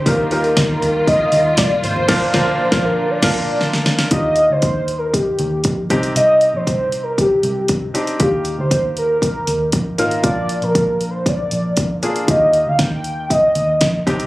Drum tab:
CC |----------------|x--------x------|----------------|----------------|
HH |o-ooo-o-o-o-o-o-|----------------|x-x-x-x-x-x-x-xx|x-x-x-x-x-x-x-xx|
SD |----o-------o-o-|o-o--o---o--oooo|----------------|----------------|
FT |------o--------o|----------------|----------------|----------------|
BD |o---o---o---o---|o-o--o---o------|o---o---o---o-o-|----o---o---o---|

CC |----------------|----------------|----------------|
HH |x-x-x-x-x-x-x-xx|x-xxx-x-x-x-x-xx|x-x-x-x-x-x-x-xx|
SD |----------------|----------------|----o-------o-o-|
FT |----------------|----------------|----------------|
BD |o---o---o---o---|o---o---o---o---|o---o---o---o-o-|